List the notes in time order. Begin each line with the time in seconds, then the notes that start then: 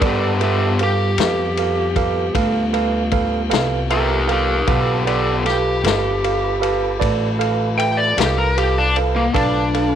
0.01 G2 B3 A4 A#4 B4 D5 F#5, kick, ride
0.06 G4
0.39 G3 B3 F4 A4 B4 E5, ride
0.44 G4
0.79 A4 B4 F5, ride
0.84 G4
1.18 F2 A4 B4 F5, snare, ride
1.57 A4 B4 F5, ride
1.96 A4 B4 F5, kick, ride
2.35 D2 A4 B4 F5, kick, ride
2.73 A4 B4 F5, ride
3.11 A4 B4 F5, kick, ride
3.50 C2 A4 B4 F5, snare, ride
3.90 G4 A4 A#4 B4 E5, ride
4.27 A4 B4 F5, ride
4.32 G4 A#4
4.67 B1 B3 F4 G4 A4 B4 F5, kick, ride
5.06 B3 G4 A4 B4 D5, ride
5.45 G4 A4 B4 F5, snare, ride
5.84 G1 A4 B4 F5, snare, ride
6.24 A4 B4 F5, ride
6.61 A4 B4 F5, ride
7.00 A1 A4 B4 D5, kick, ride
7.39 A4 B4 F5, ride
7.77 A4 B4 E5 G5, ride
7.97 D5
8.17 C2 G4 A4 B4 F5, snare, ride
8.38 A#4
8.57 G4 A4 B4 F5, ride
8.78 D4
8.96 A4 B4 F5, ride
9.16 A#3
9.33 B1 A3 D4 F4 A4 B4 F5, kick, ride
9.74 A4 B4 F5, ride